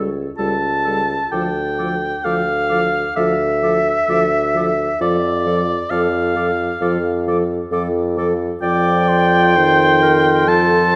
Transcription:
0.00 0.28 C#2 medium
0.38 1.22 C#2 medium
0.38 0.55 G3 medium
0.38 0.55 A4 medium
0.38 1.28 A5 medium
0.38 0.48 E6 medium
0.84 1.02 G3 soft
0.84 1.02 A4 medium
0.84 0.95 E6 soft
1.31 2.15 D2 medium
1.31 1.48 F3 medium
1.31 1.48 A4 medium
1.31 2.26 G5 medium
1.31 1.42 D6 medium
1.78 1.95 F3 medium
1.78 1.95 A4 medium
1.78 1.88 D6 medium
2.24 3.06 D2 medium
2.24 2.41 F3 medium
2.24 2.41 A4 medium
2.24 3.16 F5 loud
2.24 2.35 D6 medium
2.69 2.86 F3 medium
2.69 2.87 A4 medium
2.69 2.79 D6 medium
3.15 3.98 D2 medium
3.15 3.33 F3 medium
3.15 3.33 A4 medium
3.15 4.98 E5 loud
3.15 3.26 D6 medium
3.62 3.78 F3 medium
3.62 3.80 A4 medium
3.62 3.73 D6 medium
4.08 4.91 D2 medium
4.08 4.24 F3 medium
4.08 4.25 A4 medium
4.08 4.19 D6 medium
4.54 4.70 F3 medium
4.54 4.72 A4 medium
4.54 4.66 D6 medium
5.00 5.81 F2 medium
5.00 5.16 F3 medium
5.00 5.17 A4 medium
5.00 5.92 D5 medium
5.00 5.12 D6 medium
5.46 5.62 F3 medium
5.46 5.62 A4 medium
5.46 5.56 D6 medium
5.91 6.71 F2 medium
5.91 6.07 F3 medium
5.91 6.08 A4 medium
5.91 7.27 F5 loud
5.91 6.01 D6 medium
6.35 6.51 F3 medium
6.35 6.52 A4 medium
6.35 6.46 D6 medium
6.81 7.61 F2 medium
6.81 6.97 F3 medium
6.81 6.98 A4 medium
6.81 6.91 D6 medium
7.27 7.43 F3 medium
7.27 7.43 A4 medium
7.27 7.37 D6 medium
7.72 8.51 F2 medium
7.72 7.88 F3 medium
7.72 7.88 A4 medium
7.72 7.82 D6 medium
8.16 8.32 F3 medium
8.16 8.34 A4 medium
8.16 8.27 D6 medium
8.61 10.96 F2 medium
8.61 9.58 F3 medium
8.61 9.57 D5 medium
8.61 10.50 G5 loud
8.61 9.09 D6 medium
9.08 10.96 C6 medium
9.56 10.47 D#3 medium
9.56 10.02 C5 medium
10.03 10.50 A#4 medium
10.48 10.96 F3 medium
10.48 10.93 A4 medium
10.48 10.96 A5 loud

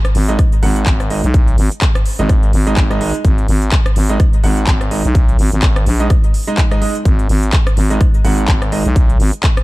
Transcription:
0.05 cross-stick medium
0.05 closed hi-hat soft
0.15 0.37 G#1 loud
0.15 open hi-hat loud
0.29 0.37 G#3 medium
0.29 0.37 D#4 medium
0.29 0.37 D#5 medium
0.29 closed hi-hat medium
0.39 kick loud
0.39 cross-stick medium
0.39 closed hi-hat medium
0.52 closed hi-hat soft
0.63 0.85 G#1 medium
0.63 0.80 G#3 medium
0.63 0.80 D#4 medium
0.63 0.80 F#5 loud
0.63 open hi-hat loud
0.76 closed hi-hat medium
0.86 1.22 G#1 loud
0.86 kick loud
0.86 clap loud
0.86 closed hi-hat medium
1.00 cross-stick medium
1.00 closed hi-hat soft
1.10 1.22 G#3 medium
1.10 1.22 D#4 medium
1.10 1.22 D#5 medium
1.10 open hi-hat loud
1.24 1.56 B1 loud
1.24 closed hi-hat medium
1.34 kick loud
1.34 closed hi-hat medium
1.48 closed hi-hat soft
1.58 1.69 G#1 medium
1.58 open hi-hat loud
1.71 closed hi-hat medium
1.82 kick loud
1.82 clap loud
1.82 closed hi-hat medium
1.95 cross-stick medium
1.95 closed hi-hat soft
2.06 open hi-hat loud
2.19 2.52 G#1 loud
2.19 2.28 G#3 medium
2.19 2.28 D#4 medium
2.19 2.28 D#5 medium
2.19 closed hi-hat medium
2.29 kick loud
2.29 cross-stick medium
2.29 closed hi-hat medium
2.43 closed hi-hat soft
2.53 2.75 G#1 loud
2.53 open hi-hat loud
2.67 2.82 G#3 medium
2.67 2.82 D#4 medium
2.67 2.82 D#5 loud
2.67 closed hi-hat medium
2.77 3.12 G#1 loud
2.77 kick loud
2.77 clap loud
2.77 closed hi-hat medium
2.91 2.99 G#3 medium
2.91 2.99 D#4 medium
2.91 2.99 D#5 loud
2.91 cross-stick medium
2.91 closed hi-hat soft
3.01 3.12 G#3 medium
3.01 3.12 D#4 medium
3.01 3.12 D#5 loud
3.01 open hi-hat loud
3.14 closed hi-hat medium
3.25 3.47 G#1 medium
3.25 kick loud
3.25 closed hi-hat medium
3.38 closed hi-hat soft
3.48 3.71 G#1 loud
3.48 open hi-hat loud
3.62 closed hi-hat soft
3.72 kick loud
3.72 clap loud
3.72 closed hi-hat medium
3.86 cross-stick medium
3.86 closed hi-hat soft
3.96 4.18 G#1 medium
3.96 open hi-hat loud
4.10 4.18 G#3 medium
4.10 4.18 D#4 medium
4.10 4.18 D#5 medium
4.10 closed hi-hat medium
4.20 kick loud
4.20 cross-stick medium
4.20 closed hi-hat medium
4.33 closed hi-hat soft
4.44 4.66 G#1 loud
4.44 4.61 G#3 medium
4.44 4.61 D#4 medium
4.44 4.61 F#5 medium
4.44 open hi-hat loud
4.57 closed hi-hat soft
4.67 5.03 G#1 loud
4.67 kick loud
4.67 clap loud
4.67 closed hi-hat medium
4.81 cross-stick medium
4.81 closed hi-hat soft
4.91 5.03 G#3 medium
4.91 5.03 D#4 medium
4.91 5.03 D#5 medium
4.91 open hi-hat loud
5.05 5.37 B1 medium
5.05 closed hi-hat soft
5.15 kick loud
5.15 closed hi-hat medium
5.29 closed hi-hat soft
5.39 5.50 G#1 medium
5.39 open hi-hat loud
5.52 5.85 G#1 medium
5.52 closed hi-hat soft
5.62 kick loud
5.62 clap loud
5.62 closed hi-hat medium
5.76 cross-stick medium
5.76 closed hi-hat soft
5.86 6.09 A#1 medium
5.86 open hi-hat loud
6.00 6.09 G#3 medium
6.00 6.09 D#4 medium
6.00 6.09 D#5 medium
6.00 closed hi-hat soft
6.10 kick loud
6.10 cross-stick medium
6.10 closed hi-hat medium
6.24 closed hi-hat soft
6.34 open hi-hat loud
6.47 6.62 G#3 medium
6.47 6.62 D#4 medium
6.47 6.62 D#5 loud
6.47 closed hi-hat soft
6.58 kick loud
6.58 clap loud
6.58 closed hi-hat medium
6.71 6.80 G#3 medium
6.71 6.80 D#4 medium
6.71 6.80 D#5 loud
6.71 cross-stick medium
6.71 closed hi-hat soft
6.82 6.93 G#3 medium
6.82 6.93 D#4 medium
6.82 6.93 D#5 loud
6.82 open hi-hat loud
6.95 closed hi-hat soft
7.05 7.28 G#1 loud
7.05 kick loud
7.05 closed hi-hat medium
7.19 closed hi-hat soft
7.29 7.51 G#1 loud
7.29 open hi-hat loud
7.43 closed hi-hat soft
7.53 kick loud
7.53 clap loud
7.53 closed hi-hat medium
7.67 cross-stick medium
7.67 closed hi-hat soft
7.77 7.99 G#1 loud
7.77 open hi-hat loud
7.90 7.99 G#3 medium
7.90 7.99 D#4 medium
7.90 7.99 D#5 medium
7.90 closed hi-hat soft
8.01 kick loud
8.01 cross-stick medium
8.01 closed hi-hat medium
8.14 closed hi-hat soft
8.24 8.47 G#1 loud
8.24 8.42 G#3 medium
8.24 8.42 D#4 medium
8.24 8.42 F#5 medium
8.24 open hi-hat loud
8.38 closed hi-hat soft
8.48 8.83 G#1 medium
8.48 kick loud
8.48 clap loud
8.48 closed hi-hat medium
8.62 cross-stick medium
8.62 closed hi-hat soft
8.72 8.83 G#3 medium
8.72 8.83 D#4 medium
8.72 8.83 D#5 medium
8.72 open hi-hat loud
8.86 9.18 B1 medium
8.86 closed hi-hat soft
8.96 kick loud
8.96 closed hi-hat medium
9.10 closed hi-hat soft
9.20 9.31 G#1 medium
9.20 open hi-hat loud
9.33 closed hi-hat medium
9.43 kick loud
9.43 clap loud
9.43 closed hi-hat medium
9.57 cross-stick medium
9.57 closed hi-hat soft

